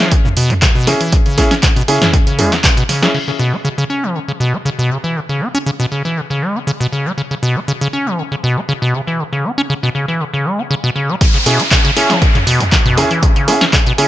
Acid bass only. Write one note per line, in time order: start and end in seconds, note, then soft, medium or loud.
0.00 0.13 E3 loud
0.12 0.16 C#3 medium
0.25 0.29 C#3 medium
0.37 0.52 B2 loud
0.50 0.54 C#4 loud
0.62 0.67 C#3 loud
0.75 0.89 B2 loud
0.87 0.95 C#3 loud
1.01 1.14 E3 medium
1.13 1.17 C#3 medium
1.26 1.39 C#3 medium
1.38 1.45 C#4 medium
1.51 1.55 C#4 loud
1.63 1.67 C#3 loud
1.76 1.83 B2 loud
1.88 1.99 C#3 medium
2.02 2.15 E3 medium
2.14 2.18 C#3 medium
2.27 2.40 C#3 medium
2.39 2.54 G#3 loud
2.52 2.56 C#4 loud
2.64 2.68 C#3 loud
2.77 2.84 B2 loud
2.89 3.04 C#3 medium
3.02 3.09 G#3 loud
3.14 3.19 C#3 medium
3.28 3.32 C#3 medium
3.39 3.54 B2 loud
3.53 3.57 C#4 loud
3.65 3.69 C#3 medium
3.78 3.85 C#3 loud
3.90 4.05 C#4 medium
4.03 4.17 E3 loud
4.15 4.19 C#3 medium
4.28 4.32 C#3 medium
4.40 4.55 B2 loud
4.53 4.57 C#4 medium
4.65 4.70 C#3 medium
4.79 4.92 B2 loud
4.91 4.98 C#3 loud
5.04 5.17 E3 medium
5.16 5.20 C#3 medium
5.29 5.43 C#3 medium
5.41 5.48 C#4 medium
5.55 5.58 C#4 loud
5.66 5.71 C#3 medium
5.80 5.86 B2 loud
5.92 6.03 C#3 medium
6.05 6.18 E3 medium
6.17 6.21 C#3 medium
6.30 6.44 C#3 medium
6.42 6.57 G#3 loud
6.55 6.59 C#4 loud
6.67 6.72 C#3 loud
6.80 6.87 B2 loud
6.92 7.07 C#3 medium
7.06 7.12 G#3 loud
7.18 7.22 C#3 medium
7.31 7.35 C#3 medium
7.43 7.58 B2 loud
7.56 7.60 C#4 loud
7.68 7.72 C#3 loud
7.81 7.88 C#3 loud
7.93 8.08 C#4 medium
8.06 8.20 E3 loud
8.18 8.23 C#3 medium
8.32 8.36 C#3 medium
8.44 8.58 B2 loud
8.57 8.61 C#4 loud
8.69 8.73 C#3 loud
8.82 8.96 B2 loud
8.94 9.01 C#3 loud
9.07 9.21 E3 medium
9.19 9.24 C#3 medium
9.33 9.46 C#3 medium
9.44 9.52 C#4 medium
9.58 9.62 C#4 loud
9.70 9.74 C#3 medium
9.83 9.90 B2 loud
9.95 10.06 C#3 medium
10.08 10.22 E3 medium
10.20 10.25 C#3 medium
10.34 10.47 C#3 medium
10.45 10.60 G#3 loud
10.59 10.63 C#4 loud
10.71 10.75 C#3 medium
10.84 10.90 B2 loud
10.96 11.11 C#3 medium
11.09 11.16 G#3 loud
11.21 11.25 C#3 medium
11.34 11.38 C#3 medium
11.46 11.61 B2 loud
11.59 11.63 C#4 loud
11.71 11.76 C#3 loud
11.85 11.91 C#3 loud
11.96 12.11 C#4 medium
12.10 12.23 E3 loud
12.22 12.26 C#3 medium
12.35 12.39 C#3 medium
12.47 12.62 B2 loud
12.60 12.64 C#4 loud
12.72 12.77 C#3 loud
12.86 12.99 B2 loud
12.97 13.05 C#3 loud
13.11 13.24 E3 medium
13.23 13.27 C#3 medium
13.36 13.49 C#3 medium
13.48 13.55 C#4 medium
13.61 13.65 C#4 loud
13.73 13.78 C#3 loud
13.86 13.93 B2 loud
13.98 14.08 C#3 medium